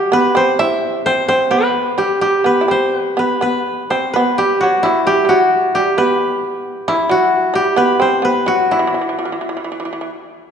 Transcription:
0.00 0.11 F#3 medium
0.00 0.81 E4 medium
0.00 1.72 G4 medium
0.12 0.33 B3 medium
0.12 0.43 B4 medium
0.35 0.57 C4 medium
0.35 1.05 C5 medium
0.59 1.02 E4 medium
0.59 2.08 E5 medium
1.06 1.27 C4 medium
1.06 1.28 C5 medium
1.28 1.50 C4 medium
1.28 1.57 C5 medium
1.51 1.95 B3 medium
1.51 2.46 B4 medium
1.98 2.20 G3 medium
1.98 2.21 G4 medium
2.21 2.44 G3 medium
2.21 4.25 G4 medium
2.44 2.61 B3 medium
2.44 2.77 B4 medium
2.61 2.68 E4 soft
2.68 3.14 C4 medium
2.68 2.97 C5 medium
2.97 3.19 B4 medium
3.17 3.40 B3 medium
3.17 3.42 B4 medium
3.41 3.86 B3 soft
3.41 3.96 B4 medium
3.90 4.13 C4 medium
3.90 4.19 C5 medium
4.13 4.37 B3 medium
4.13 5.91 B4 medium
4.38 4.60 G3 soft
4.38 4.67 G4 medium
4.61 4.84 F#3 medium
4.61 5.13 F#4 medium
4.83 5.06 E3 medium
4.83 6.88 E4 medium
5.07 5.22 G3 medium
5.07 5.35 G4 medium
5.25 5.30 G3 soft
5.29 5.72 F#3 soft
5.29 5.81 F#4 medium
5.75 5.97 G3 medium
5.75 7.17 G4 medium
5.98 6.61 B3 medium
5.98 7.76 B4 medium
6.88 7.09 E3 medium
6.88 8.71 E4 medium
7.09 7.52 F#3 medium
7.09 7.61 F#4 medium
7.54 7.75 G3 medium
7.54 8.54 G4 medium
7.76 7.98 B3 medium
7.76 8.08 B4 medium
8.00 8.22 C4 medium
8.00 8.31 C5 medium
8.22 8.45 B3 medium
8.22 10.02 B4 medium
8.46 8.69 F#3 medium
8.46 10.51 F#4 medium
8.71 8.78 E3 soft
8.71 9.22 E4 soft
8.79 8.86 E3 soft
8.87 8.93 E3 soft
8.94 9.00 E3 soft
9.01 9.08 E3 soft
9.09 9.16 E3 soft
9.19 9.24 E3 soft
9.19 9.36 F4 soft
9.25 9.31 E3 soft
9.32 9.40 E3 soft
9.32 9.51 E4 soft
9.41 9.48 E3 soft
9.49 9.56 E3 soft
9.49 9.64 F4 soft
9.57 9.63 E3 soft
9.64 9.71 E3 soft
9.64 10.51 E4 soft
9.72 9.79 E3 soft
9.80 9.84 E3 soft
9.85 9.91 E3 soft
9.93 10.00 E3 soft
10.01 10.09 E3 soft

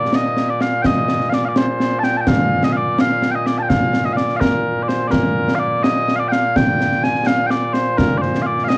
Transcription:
0.00 8.78 A#2 medium
0.00 0.15 D5 medium
0.13 0.50 D#5 medium
0.13 snare loud
0.37 snare medium
0.50 0.61 D5 medium
0.61 0.82 F5 medium
0.61 snare medium
0.82 1.29 D#5 loud
0.82 0.86 G5 loud
0.82 concert bass drum medium
0.82 snare loud
1.08 snare medium
1.21 snare soft
1.29 1.45 D5 medium
1.29 1.33 F5 medium
1.29 snare medium
1.45 1.57 D5 medium
1.45 1.48 F5 medium
1.56 1.99 C5 loud
1.56 snare loud
1.80 snare medium
1.99 2.03 A5 medium
2.03 2.17 G5 medium
2.03 snare medium
2.17 2.28 G5 medium
2.17 2.20 A5 medium
2.27 2.64 F5 loud
2.27 concert bass drum medium
2.27 snare loud
2.63 2.72 D#5 medium
2.63 snare medium
2.72 2.76 F5 loud
2.76 3.00 D5 loud
2.98 3.31 F5 loud
2.98 snare loud
3.22 snare medium
3.31 3.46 D#5 medium
3.31 3.35 G5 medium
3.46 3.58 D5 medium
3.46 snare medium
3.58 3.62 A5 medium
3.62 3.69 G5 medium
3.69 4.05 F5 loud
3.69 concert bass drum medium
3.69 snare loud
3.93 snare medium
4.05 4.13 D#5 medium
4.05 snare soft
4.13 4.36 D5 medium
4.13 4.17 F5 medium
4.17 snare medium
4.29 snare soft
4.36 4.83 A#4 loud
4.36 4.40 F5 loud
4.41 concert bass drum medium
4.41 snare loud
4.83 4.88 D5 medium
4.88 5.08 C5 medium
4.88 snare medium
5.08 5.55 A#4 medium
5.08 5.11 D5 medium
5.12 concert bass drum medium
5.12 snare loud
5.48 snare medium
5.55 5.59 F5 loud
5.59 5.83 D5 loud
5.83 6.16 D#5 loud
5.83 snare loud
6.08 snare medium
6.16 6.28 D5 medium
6.16 6.19 F5 medium
6.28 6.56 F5 loud
6.28 6.32 G5 loud
6.32 snare medium
6.56 7.03 G5 loud
6.56 concert bass drum medium
6.56 snare loud
6.81 snare medium
6.92 snare soft
7.03 7.27 G#5 loud
7.03 snare medium
7.15 snare soft
7.27 7.47 F5 loud
7.27 snare loud
7.47 7.74 D5 loud
7.47 7.50 G5 loud
7.47 snare medium
7.74 7.98 C5 loud
7.74 snare medium
7.98 8.18 A#4 loud
7.98 concert bass drum medium
7.98 snare loud
8.18 8.42 C5 medium
8.18 8.22 D5 medium
8.22 snare soft
8.34 snare medium
8.42 8.46 F5 medium
8.46 8.64 D5 medium
8.58 snare soft
8.64 8.68 F5 loud
8.68 8.78 D#5 loud
8.68 snare medium

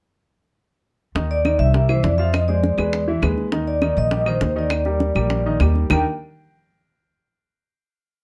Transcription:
1.15 1.56 D#2 medium
1.15 1.39 D#3 medium
1.15 1.40 D#4 medium
1.15 1.40 D#5 medium
1.15 high bongo medium
1.31 1.58 D5 medium
1.45 1.69 D#3 medium
1.45 1.69 D#4 medium
1.45 1.69 D#5 medium
1.45 high bongo medium
1.45 claves medium
1.59 2.00 C2 medium
1.59 1.87 E5 loud
1.74 1.86 G3 medium
1.74 1.86 G4 medium
1.74 1.87 A#4 medium
1.74 high bongo medium
1.89 2.13 E3 medium
1.89 2.14 E4 medium
1.89 2.04 C5 medium
1.89 2.14 E5 medium
1.89 claves medium
2.03 2.72 F2 medium
2.03 2.19 D5 medium
2.03 high bongo medium
2.03 low bongo medium
2.18 2.43 F3 medium
2.18 2.43 F4 medium
2.18 2.32 E5 medium
2.18 2.43 F5 medium
2.33 2.47 D#5 medium
2.33 high bongo medium
2.33 claves medium
2.48 2.73 G#3 medium
2.48 2.73 G#4 medium
2.48 2.73 C5 medium
2.48 3.03 D5 medium
2.48 high bongo soft
2.63 high bongo medium
2.78 3.19 E2 medium
2.78 3.02 G#3 medium
2.78 3.03 G#4 medium
2.78 3.03 B4 medium
2.78 high bongo soft
2.78 claves medium
2.93 high bongo medium
3.08 3.20 E3 medium
3.08 3.20 E4 medium
3.08 3.20 E5 medium
3.22 3.91 D#2 medium
3.22 3.47 G#3 medium
3.22 3.47 G#4 medium
3.22 3.47 B4 medium
3.22 high bongo medium
3.22 low bongo medium
3.22 claves medium
3.38 high bongo soft
3.52 3.76 D#3 medium
3.52 3.77 D#4 medium
3.52 3.77 D#5 medium
3.52 high bongo medium
3.68 3.95 D5 medium
3.82 4.06 D#3 medium
3.82 4.06 D#4 medium
3.82 4.06 D#5 medium
3.82 high bongo medium
3.82 claves medium
3.97 4.38 A#1 medium
3.97 4.25 D#5 loud
4.11 4.23 G3 medium
4.11 4.24 G4 medium
4.11 4.24 A#4 medium
4.11 high bongo medium
4.26 4.50 D#3 medium
4.26 4.51 D#4 medium
4.26 4.58 C5 medium
4.26 4.51 D#5 medium
4.26 claves medium
4.41 5.10 D#2 medium
4.41 high bongo medium
4.41 low bongo medium
4.56 4.80 D#3 medium
4.56 4.80 D#4 medium
4.56 5.58 D5 medium
4.56 4.81 D#5 medium
4.70 high bongo medium
4.70 claves medium
4.85 5.10 G3 medium
4.85 5.10 G4 medium
4.85 5.10 A#4 medium
4.85 high bongo soft
5.00 high bongo medium
5.15 5.57 A#1 medium
5.15 5.40 G3 medium
5.15 5.40 G4 medium
5.15 5.40 A#4 medium
5.15 high bongo soft
5.15 claves medium
5.30 high bongo medium
5.46 5.58 D#3 medium
5.46 5.58 D#4 medium
5.46 5.58 D#5 medium
5.60 5.86 D#2 medium
5.60 5.85 G3 medium
5.60 5.85 G4 medium
5.60 5.85 A#4 medium
5.60 high bongo medium
5.60 low bongo medium
5.60 claves medium
5.75 high bongo soft
5.90 6.04 D#2 medium
5.90 6.04 D#3 medium
5.90 6.04 A#3 medium
5.90 6.04 D4 medium
5.90 6.04 D#4 medium
5.90 6.04 G4 medium
5.90 6.04 A#4 loud
5.90 6.04 G5 medium
5.90 low bongo medium
5.90 claves loud

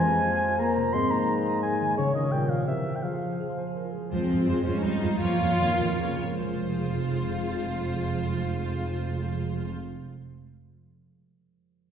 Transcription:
0.00 0.95 F2 medium
0.00 0.95 F3 medium
0.00 0.58 G#3 medium
0.00 0.66 C4 soft
0.00 0.14 C5 soft
0.00 1.93 C5 medium
0.00 0.58 G#5 loud
0.00 0.61 G#5 medium
0.00 0.41 C6 medium
0.07 0.23 F4 soft
0.16 0.49 C5 soft
0.24 0.58 F4 soft
0.33 0.95 F5 soft
0.42 1.45 C6 medium
0.50 1.19 C5 soft
0.58 0.93 A#3 medium
0.58 0.95 F4 soft
0.58 0.95 A#5 medium
0.58 0.92 A#5 medium
0.68 0.84 C4 soft
0.76 0.95 C3 soft
0.85 1.99 C4 soft
0.93 1.99 G#2 medium
0.93 1.97 G#3 medium
0.93 1.11 C4 medium
0.93 0.99 C6 medium
0.93 1.12 C6 medium
1.03 1.71 G#3 soft
1.11 1.63 A#3 medium
1.11 1.62 D#4 soft
1.11 1.62 A#5 medium
1.20 1.99 C5 soft
1.28 1.53 G#4 soft
1.37 1.99 D#5 soft
1.46 1.99 C6 soft
1.55 2.33 G#4 soft
1.63 1.97 G#3 medium
1.63 1.99 D#4 soft
1.63 1.96 G#5 medium
1.72 1.88 G#3 soft
1.81 1.99 D#3 soft
1.89 2.05 G#3 soft
1.97 2.31 C#3 soft
1.97 2.34 C#3 soft
1.97 2.15 C#3 medium
1.97 2.15 C#5 medium
1.97 2.66 C#5 soft
1.97 2.14 C#5 medium
2.06 2.33 G#3 soft
2.13 2.32 D#3 soft
2.13 2.33 F4 soft
2.13 2.32 D#5 soft
2.13 2.33 D#5 medium
2.23 2.57 C#5 soft
2.31 2.69 A#2 soft
2.31 2.66 A#2 soft
2.31 2.49 G3 soft
2.31 2.49 G5 medium
2.31 2.51 G5 medium
2.41 2.75 A#3 soft
2.48 2.67 F3 soft
2.48 2.84 G4 soft
2.48 2.67 F5 soft
2.48 2.69 F5 medium
2.58 2.93 C#5 soft
2.67 3.05 C3 soft
2.67 2.94 E3 soft
2.67 3.05 A#4 soft
2.67 2.74 E5 soft
2.67 2.97 E5 soft
2.76 3.05 A#3 soft
2.86 3.05 G4 soft
2.94 2.99 G3 soft
2.94 3.05 C#5 soft
2.94 3.03 G5 soft
2.94 3.04 G5 soft
3.03 4.10 F3 soft
3.03 3.94 F3 soft
3.03 3.75 F3 soft
3.03 3.36 G#4 soft
3.03 3.75 F5 soft
3.03 3.74 F5 soft
3.12 3.83 F4 soft
3.22 3.75 C5 soft
3.31 4.47 G#4 soft
3.39 3.47 G#4 soft
3.39 3.66 F5 soft
3.49 5.22 C6 soft
3.57 3.65 C5 soft
3.57 5.22 G#5 soft
3.67 4.64 F5 soft
3.73 3.94 A#4 soft
3.73 5.01 C5 soft
3.85 4.01 F4 soft
3.92 5.22 G#3 soft
3.92 4.11 G#4 soft
4.02 4.28 F4 soft
4.11 4.19 F2 soft
4.11 5.20 F3 soft
4.11 4.45 F3 soft
4.11 4.28 G#3 soft
4.11 4.62 C4 medium
4.11 4.29 F4 soft
4.11 4.28 C5 soft
4.29 4.37 F2 soft
4.29 4.46 G#3 soft
4.29 5.38 F4 soft
4.29 4.46 F4 soft
4.29 4.47 C5 soft
4.47 4.55 F2 soft
4.47 4.64 G#3 soft
4.47 4.84 G#3 soft
4.47 4.63 F4 soft
4.47 4.82 G#4 soft
4.47 4.65 C5 soft
4.65 4.73 F2 soft
4.65 4.82 G#3 soft
4.65 4.84 C#4 soft
4.65 4.82 F4 soft
4.65 4.83 C5 soft
4.65 5.78 F5 soft
4.83 4.91 F2 soft
4.83 5.21 G3 soft
4.83 5.01 G#3 soft
4.83 5.20 D#4 medium
4.83 5.01 F4 soft
4.83 5.22 G#4 soft
4.83 5.01 C5 soft
5.02 5.10 F2 soft
5.02 5.20 G#3 soft
5.02 5.19 F4 soft
5.02 5.22 C5 soft
5.02 5.20 C5 soft
5.20 5.29 F2 soft
5.20 6.40 F3 soft
5.20 5.58 F3 medium
5.20 5.38 A#3 soft
5.20 5.38 F4 soft
5.20 6.19 F4 medium
5.20 5.39 C#5 soft
5.39 5.48 F2 soft
5.39 5.58 A#3 soft
5.39 5.58 F4 soft
5.39 5.59 C#5 soft
5.59 5.67 F2 soft
5.59 5.98 D#3 soft
5.59 5.77 A#3 soft
5.59 5.78 F4 soft
5.59 5.98 A#4 soft
5.59 5.78 C#5 soft
5.78 5.87 F2 soft
5.78 5.98 A#3 soft
5.78 5.98 F4 soft
5.78 5.98 C#5 soft
5.78 6.68 F5 soft
5.99 6.07 F2 soft
5.99 6.20 C#3 soft
5.99 6.20 A#3 soft
5.99 6.20 F4 soft
5.99 6.43 A#4 soft
5.99 6.19 C#5 soft
6.20 6.28 F2 soft
6.20 6.41 A#3 soft
6.20 6.40 F4 soft
6.20 6.41 C#5 soft
6.20 6.43 C#5 soft
6.41 9.69 F1 soft
6.41 9.69 F2 soft
6.41 10.24 F3 soft
6.41 9.69 G#3 soft
6.41 9.69 F4 soft
6.41 9.68 C5 soft
6.49 9.94 G#3 soft
6.56 10.01 F4 soft
6.63 10.08 C5 soft
6.69 10.14 F5 soft

